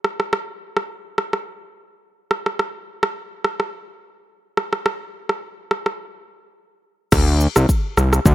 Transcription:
0.04 cross-stick
0.20 cross-stick
0.33 cross-stick
0.77 cross-stick
1.18 cross-stick
1.33 cross-stick
2.31 cross-stick
2.46 cross-stick
2.59 cross-stick
3.03 cross-stick
3.44 cross-stick
3.60 cross-stick
4.57 cross-stick
4.73 cross-stick
4.86 cross-stick
5.29 cross-stick
5.71 cross-stick
5.86 cross-stick
7.12 D2, kick, cross-stick, crash, shaker
7.41 shaker
7.56 C2, cross-stick, shaker
7.69 kick, shaker
7.97 C2, cross-stick, shaker
8.13 cross-stick, shaker
8.26 D2, kick, shaker

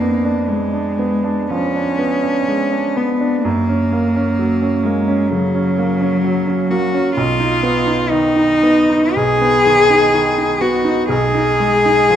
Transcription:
Already playing: F2 A#3 D4
0.01 B3
0.25 D4
0.48 G#3
0.73 D4
0.99 B3
1.24 D4
1.50 F3 C#4
1.75 D4
1.99 B3
2.23 D4
2.48 G#3
2.72 D4
2.96 B3
3.21 D4
3.44 F#2 A#3
3.69 C#4
3.92 A#3
4.16 C#4
4.39 F#3
4.62 C#4
4.83 G#3 A#3
5.08 C#4
5.30 C#3 F#3
5.55 C#4
5.78 A#3
6.01 C#4
6.24 F#3
6.47 C#4
6.70 A#3 F#4
6.94 C#4
7.15 B1 F4
7.40 D#4
7.63 B3
7.87 D#4
8.10 D#3 D#4
8.36 D#4
8.63 B3
8.90 D#4
9.14 B1 G#4
9.41 B3
9.66 D#3
9.90 D#4
10.14 D#3
10.38 D#4
10.60 B3 F#4
10.85 D#4
11.08 B1 G#4
11.35 D#4
11.60 G#3
11.86 D#4
12.10 F3

